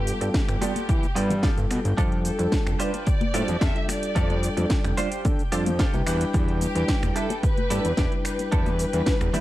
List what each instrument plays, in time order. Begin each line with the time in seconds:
Already playing: analog synth bass G2, tine electric piano G3 B3 F4 A4, violin section G4, analog synth pad G4 G5
0.07 open hi-hat, shaker
0.21 analog synth bass G2, tine electric piano G3 B3 F4 A4, muted clean electric guitar stroke, closed hi-hat, shaker
0.34 violin section G4, muted clean electric guitar stroke, kick, snare, closed hi-hat, muted conga, shaker
0.48 analog synth bass G1, finger snap, closed hi-hat, shaker
0.61 tine electric piano G3 B3 F4 D5, clean electric guitar B3 F4 G4 A4, open hi-hat, muted conga, shaker
0.76 closed hi-hat, high conga, shaker
0.89 analog synth bass E3, kick, closed hi-hat, shaker
1.03 closed hi-hat, muted conga, shaker
1.15 analog synth bass G2, tine electric piano G3 B3 F4 B4, clean electric guitar B3 F4 G4 A4, open hi-hat, shaker
1.30 closed hi-hat, muted conga, high conga, low conga, shaker
1.43 clean electric guitar B3 F4 G4 A4, kick, snare, closed hi-hat, shaker
1.57 analog synth bass G1, tine electric piano G3 B3 F4 A4, closed hi-hat, shaker
1.70 analog synth bass B2, finger snap, muted clean electric guitar stroke, open hi-hat, muted conga, shaker
1.85 analog synth bass G1, closed hi-hat, shaker
1.97 analog synth bass F2, tine electric piano G3 F4 A4, clean electric guitar D4 F4 G4 A4, analog synth pad G4 G5, kick, closed hi-hat, shaker
2.12 closed hi-hat
2.25 violin section A4, open hi-hat, muted conga, shaker
2.39 analog synth bass F2, tine electric piano G3 D4 F4 A4, muted clean electric guitar stroke, closed hi-hat, shaker
2.52 muted clean electric guitar stroke, kick, snare, closed hi-hat, muted conga, shaker
2.67 analog synth bass F1, finger snap, closed hi-hat, shaker
2.79 tine electric piano G3 D4 F4 D5, clean electric guitar D4 F4 G4 C5, violin section B4, open hi-hat, shaker
2.94 closed hi-hat, muted conga, shaker
3.07 violin section D5, kick, closed hi-hat, shaker
3.21 closed hi-hat, muted conga, high conga
3.34 analog synth bass A2, tine electric piano G3 D4 F4 C5, clean electric guitar D4 F4 G4 A4, open hi-hat, high conga, shaker
3.48 analog synth bass F2, closed hi-hat, low conga, shaker
3.61 analog synth bass F1, clean electric guitar D4 F4 G4 A4, violin section E5, kick, snare, closed hi-hat, muted conga, shaker
3.75 tine electric piano G3 D4 F4 A4, closed hi-hat
3.88 violin section D5, finger snap, muted clean electric guitar stroke, open hi-hat, muted conga, shaker
4.03 closed hi-hat, shaker
4.15 analog synth bass F2, tine electric piano G3 D4 F4 A4, clean electric guitar D4 F4 G4 A4, kick, closed hi-hat, shaker
4.30 closed hi-hat, muted conga
4.43 open hi-hat, shaker
4.57 analog synth bass F2, tine electric piano G3 D4 F4 A4, muted clean electric guitar stroke, closed hi-hat, muted conga, shaker
4.70 muted clean electric guitar stroke, kick, snare, closed hi-hat, shaker
4.84 analog synth bass F1, finger snap, closed hi-hat, shaker
4.97 tine electric piano G3 D4 F4 D5, clean electric guitar D4 F4 G4 C5, open hi-hat, muted conga, shaker
5.12 closed hi-hat, shaker
5.25 analog synth bass D3, kick, closed hi-hat, muted conga, shaker
5.39 closed hi-hat, shaker
5.52 analog synth bass F2, tine electric piano G3 D4 F4 C5, clean electric guitar D4 F4 G4 A4, open hi-hat, shaker
5.66 closed hi-hat, muted conga, high conga, low conga, shaker
5.79 clean electric guitar D4 F4 G4 A4, kick, snare, closed hi-hat, shaker
5.93 analog synth bass C2, tine electric piano G3 D4 E4 B4, closed hi-hat, muted conga, shaker
6.07 analog synth bass E2, clean electric guitar D4 E4 G4 B4, finger snap, open hi-hat, shaker
6.21 closed hi-hat, shaker
6.33 analog synth bass E2, tine electric piano G3 D4 B4, kick, closed hi-hat, muted conga, shaker
6.48 closed hi-hat
6.61 violin section G4, open hi-hat, muted conga, shaker
6.75 analog synth bass E2, tine electric piano G3 D4 E4 B4, muted clean electric guitar stroke, closed hi-hat, shaker
6.88 muted clean electric guitar stroke, kick, snare, closed hi-hat, shaker
7.03 analog synth bass E1, finger snap, closed hi-hat, muted conga, shaker
7.16 tine electric piano G3 D4 E4 E5, clean electric guitar D4 E4 G4 B4, violin section A4, open hi-hat, shaker
7.30 closed hi-hat, muted conga, shaker
7.43 violin section B4, kick, closed hi-hat, shaker
7.57 closed hi-hat, high conga
7.70 analog synth bass G2, tine electric piano G3 D4 E4 D5, clean electric guitar D4 E4 G4 A4, open hi-hat, muted conga, high conga, shaker
7.85 analog synth bass E2, closed hi-hat, low conga, shaker
7.97 analog synth bass E1, clean electric guitar D4 E4 G4 D5, kick, snare, closed hi-hat, muted conga, shaker
8.12 tine electric piano G3 D4 E4 B4, closed hi-hat
8.25 violin section B4, finger snap, muted clean electric guitar stroke, open hi-hat, shaker
8.39 closed hi-hat, muted conga, shaker
8.52 analog synth bass E2, tine electric piano G3 D4 E4 B4, clean electric guitar D4 E4 G4 A4, kick, closed hi-hat, shaker
8.66 closed hi-hat, muted conga, shaker
8.79 open hi-hat, shaker
8.93 analog synth bass E2, tine electric piano G3 D4 E4 B4, muted clean electric guitar stroke, closed hi-hat, shaker
9.06 muted clean electric guitar stroke, kick, snare, closed hi-hat, muted conga, shaker
9.21 analog synth bass E1, finger snap, closed hi-hat, shaker
9.33 tine electric piano G3 D4 E4 E5, clean electric guitar D4 E4 G4 B4, open hi-hat, muted conga, low conga, shaker